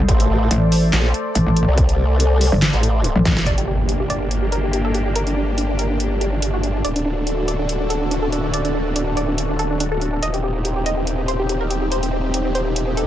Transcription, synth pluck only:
3.46 3.52 D5 medium
3.58 3.63 G4 medium
3.68 3.74 G4 medium
3.89 3.95 G4 medium
4.00 4.05 G4 medium
4.10 4.16 D5 medium
4.21 4.26 G4 medium
4.42 4.47 G4 medium
4.52 4.58 A#4 medium
4.63 4.69 G4 medium
4.73 4.79 G4 medium
4.85 4.90 A4 medium
4.95 5.00 G4 medium
5.06 5.11 G4 medium
5.16 5.21 A#4 medium
5.27 5.32 D4 medium
5.37 5.43 D4 medium
5.58 5.64 D4 medium
5.69 5.74 D4 medium
5.79 5.85 A#4 medium
5.90 5.95 D4 medium
6.11 6.16 D4 medium
6.21 6.27 G4 medium
6.32 6.38 D4 medium
6.42 6.48 D4 medium
6.54 6.59 F#4 medium
6.63 6.69 D4 medium
6.75 6.80 D4 medium
6.84 6.90 D5 medium
6.96 7.01 D4 medium
7.06 7.12 D4 medium
7.27 7.33 D4 medium
7.38 7.43 D4 medium
7.48 7.54 D5 medium
7.59 7.64 D4 medium
7.80 7.85 D4 medium
7.90 7.96 A4 medium
8.01 8.07 D4 medium
8.11 8.17 D4 medium
8.23 8.28 A4 medium
8.32 8.38 D4 medium
8.44 8.49 D4 medium
8.54 8.59 D5 medium
8.65 8.70 D4 medium
8.75 8.81 D4 medium
8.96 9.02 D4 medium
9.07 9.12 D4 medium
9.17 9.23 D5 medium
9.28 9.33 D4 medium
9.49 9.54 D4 medium
9.59 9.65 A4 medium
9.71 9.76 D4 medium
9.80 9.86 D4 medium
9.92 9.97 A4 medium
10.01 10.07 D4 medium
10.13 10.18 D4 medium
10.23 10.28 D#5 medium
10.34 10.39 G4 medium
10.44 10.50 G4 medium
10.65 10.71 G4 medium
10.76 10.81 G4 medium
10.86 10.92 D#5 medium
10.97 11.02 G4 medium
11.18 11.23 G4 medium
11.28 11.34 C5 medium
11.40 11.45 G4 medium
11.49 11.55 G4 medium
11.61 11.66 A#4 medium
11.71 11.76 G4 medium
11.82 11.87 G4 medium
11.92 11.98 C5 medium
12.03 12.08 C4 medium
12.13 12.19 C4 medium
12.34 12.40 C4 medium
12.45 12.50 C4 medium
12.55 12.61 C5 medium
12.66 12.71 C4 medium
12.87 12.93 C4 medium
12.97 13.03 A4 medium

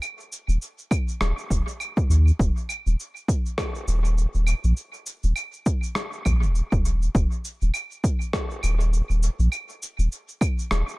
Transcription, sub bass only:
0.48 0.57 D#1 medium
1.21 1.32 D#1 medium
1.50 1.62 D#1 medium
2.09 2.31 D#2 medium
2.39 2.51 D#1 loud
2.86 2.95 D#1 medium
3.87 4.26 D#1 loud
4.34 4.53 D#1 medium
4.64 4.73 A#1 medium
5.23 5.32 D#1 medium
6.26 6.44 A#1 medium
6.42 6.61 D#1 loud
6.72 7.08 D#1 medium
7.15 7.26 D#1 loud
7.62 7.70 D#1 medium
8.63 9.01 D#1 medium
9.09 9.28 D#1 medium
9.39 9.48 A#1 medium
9.98 10.07 D#1 medium
10.71 10.83 D#1 medium

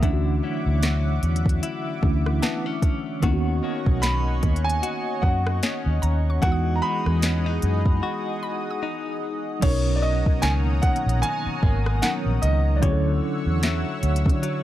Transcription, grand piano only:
0.00 1.19 E5 medium
4.02 4.61 B5 loud
4.64 5.24 G#5 loud
5.22 6.38 F#5 medium
6.42 6.77 F#5 loud
6.76 6.82 A#5 medium
6.82 9.18 B5 loud
9.62 9.98 C#5 loud
9.96 10.02 D5 medium
10.02 10.40 D#5 loud
10.42 10.51 G#5 loud
10.82 11.23 F#5 loud
11.22 12.05 G#5 loud
12.02 12.11 F#5 loud
12.42 12.77 D#5 medium
12.76 12.82 D5 medium
12.82 14.63 C#5 medium

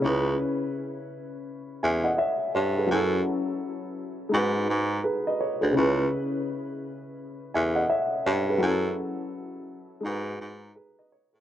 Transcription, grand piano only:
0.00 2.48 C#3 medium
0.00 2.49 C#4 medium
0.05 2.51 E4 medium
0.05 1.81 B4 medium
1.83 2.04 E5 medium
1.83 2.04 G#5 medium
2.04 2.18 D#5 medium
2.04 2.17 F#5 medium
2.18 2.53 C#5 medium
2.18 2.52 E5 medium
2.55 2.76 C#5 medium
2.78 3.11 G#4 medium
2.78 3.11 B4 medium
2.87 4.28 F#3 medium
2.87 4.30 C#4 medium
2.92 4.31 E4 medium
2.92 4.32 A4 medium
4.29 5.71 G#3 medium
4.29 5.72 D#4 medium
4.34 5.74 F#4 medium
4.34 4.70 B4 medium
5.04 5.25 G#4 medium
5.04 5.25 B4 medium
5.27 5.40 B4 medium
5.27 5.40 D#5 medium
5.41 5.61 C#5 medium
5.61 5.96 G#4 medium
5.61 5.77 B4 medium
5.71 8.20 C#3 medium
5.71 8.21 C#4 medium
5.76 8.22 E4 medium
5.76 7.52 B4 medium
7.54 7.76 E5 medium
7.54 7.75 G#5 medium
7.75 7.89 D#5 medium
7.75 7.89 F#5 medium
7.90 8.24 C#5 medium
7.90 8.24 E5 medium
8.26 8.47 C#5 medium
8.49 8.83 G#4 medium
8.49 8.82 B4 medium
8.58 10.00 F#3 medium
8.58 10.01 C#4 medium
8.63 10.02 E4 medium
8.63 10.04 A4 medium
10.01 11.40 G#3 medium
10.01 11.40 D#4 medium
10.06 11.40 F#4 medium
10.06 10.41 B4 medium
10.75 10.97 G#4 medium
10.75 10.96 B4 medium
10.99 11.12 B4 medium
10.99 11.11 D#5 medium
11.12 11.33 C#5 medium
11.33 11.40 G#4 medium
11.33 11.40 B4 medium

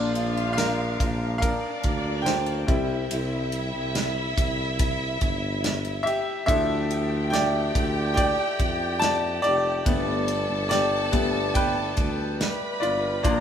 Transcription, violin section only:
0.00 1.37 F4 medium
0.00 1.37 F5 medium
1.42 2.66 D4 medium
1.42 2.66 D5 medium
2.67 6.44 E4 medium
2.67 6.44 E5 loud
6.48 9.82 G4 medium
6.48 9.82 G5 loud
9.85 12.35 A4 medium
9.85 12.35 A5 medium
12.40 13.23 B4 medium
12.40 13.23 B5 medium
13.22 13.40 A#4 medium
13.22 13.40 A#5 medium

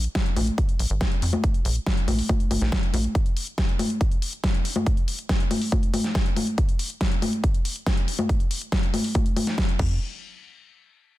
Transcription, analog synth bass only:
0.37 0.51 A#1 loud
0.79 0.87 A#1 medium
0.90 1.05 G#1 medium
1.22 1.37 F2 medium
1.65 1.79 A#1 loud
2.08 2.22 A#1 medium
2.51 2.58 G#1 medium
2.61 2.76 A#1 medium
2.94 3.08 A#1 loud
9.79 9.99 F2 loud

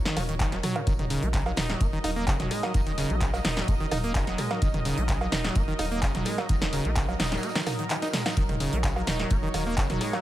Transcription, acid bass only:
0.05 0.18 D#3 loud
0.17 0.23 F#3 loud
0.29 0.35 D#3 medium
0.40 0.54 D#3 medium
0.52 0.58 F#3 loud
0.63 0.77 F#3 loud
0.76 0.82 C#3 medium
0.87 0.94 D#3 medium
0.99 1.05 D#3 medium
1.10 1.24 C#3 loud
1.23 1.29 A#3 medium
1.34 1.44 C#3 medium
1.46 1.52 F#3 medium
1.57 1.71 D#4 medium
1.69 1.82 F#3 loud
1.81 1.87 A#3 medium
1.93 1.99 D#3 loud
2.04 2.11 D#4 loud
2.16 2.25 A#3 loud
2.27 2.38 C#3 medium
2.40 2.52 F#3 medium
2.51 2.65 G#3 medium
2.63 2.72 F#3 loud
2.74 2.81 D#3 medium
2.87 2.93 D#3 medium
2.98 3.12 C#3 loud
3.10 3.16 A#3 medium
3.21 3.31 C#3 medium
3.33 3.40 F#3 medium
3.45 3.58 D#4 medium
3.57 3.70 F#3 loud
3.68 3.75 A#3 medium
3.80 3.87 D#3 loud
3.92 3.98 D#4 loud
4.04 4.13 A#3 loud
4.15 4.25 C#3 medium
4.27 4.40 F#3 medium
4.38 4.52 G#3 medium
4.51 4.60 F#3 loud
4.62 4.69 D#3 medium
4.74 4.80 D#3 medium
4.85 4.99 C#3 loud
4.98 5.04 A#3 medium
5.09 5.19 C#3 medium
5.21 5.27 F#3 medium
5.32 5.46 D#4 medium
5.44 5.57 F#3 loud
5.56 5.62 A#3 medium
5.68 5.74 D#3 loud
5.79 5.86 D#4 loud
5.91 6.01 A#3 loud
6.03 6.13 C#3 medium
6.15 6.27 F#3 medium
6.26 6.40 G#3 medium
6.38 6.47 F#3 loud
6.49 6.56 D#3 medium
6.62 6.68 D#3 medium
6.73 6.87 C#3 loud
6.85 6.91 A#3 medium
6.96 7.06 C#3 medium
7.09 7.15 F#3 medium
7.20 7.34 D#4 medium
7.32 7.45 F#3 loud
7.43 7.50 A#3 medium
7.55 7.62 D#3 loud
7.67 7.73 D#4 medium
7.79 7.85 D#3 medium
7.90 7.97 D#3 medium
8.02 8.08 D#4 loud
8.13 8.24 G#3 medium
8.26 8.35 D#4 medium
8.37 8.44 D#3 medium
8.49 8.55 D#3 medium
8.60 8.74 C#3 loud
8.73 8.79 A#3 medium
8.84 8.94 C#3 medium
8.96 9.02 F#3 medium
9.07 9.21 D#4 medium
9.19 9.32 F#3 loud
9.31 9.37 A#3 medium
9.43 9.49 D#3 loud
9.54 9.64 D#3 medium
9.66 9.76 A#3 loud
9.78 9.88 C#3 medium
9.90 10.02 F#3 medium
10.01 10.15 G#3 medium
10.13 10.21 F#3 loud

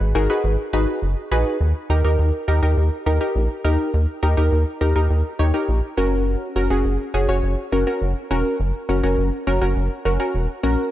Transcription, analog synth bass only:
0.01 0.13 G#1 loud
0.15 0.28 G#1 loud
0.44 0.57 G#1 loud
0.73 0.86 G#1 loud
1.02 1.15 F#1 loud
1.31 1.44 A#1 medium
1.60 1.73 D#2 loud
1.90 2.02 D#2 loud
2.04 2.17 D#2 medium
2.19 2.32 D#2 loud
2.48 2.61 D#2 loud
2.63 2.75 D#2 loud
2.77 2.90 D#2 loud
3.06 3.19 D#2 medium
3.35 3.48 A#1 loud
3.65 3.77 D#2 loud
3.94 4.06 D#2 loud
4.23 4.35 D#2 loud
4.37 4.50 D#2 loud
4.52 4.65 D#2 loud
4.81 4.94 D#2 loud
4.96 5.08 D#2 loud
5.10 5.23 D#2 loud
5.39 5.52 D#2 loud
5.68 5.81 A#1 loud
5.97 6.36 F#1 loud
6.56 6.68 F#1 loud
6.70 6.83 F#1 loud
6.85 6.98 F#1 loud
7.14 7.27 F#1 loud
7.29 7.41 F#1 loud
7.43 7.56 F#1 loud
7.72 7.85 F#1 medium
8.02 8.14 F#1 loud
8.31 8.43 E1 medium
8.60 8.72 F#1 loud
8.89 9.02 F#1 loud
9.03 9.16 F#1 loud
9.18 9.31 F#1 loud
9.47 9.60 F#1 loud
9.62 9.74 F#1 medium
9.76 9.89 F#1 loud
10.05 10.18 F#1 loud
10.35 10.47 E1 medium
10.64 10.76 A#1 medium

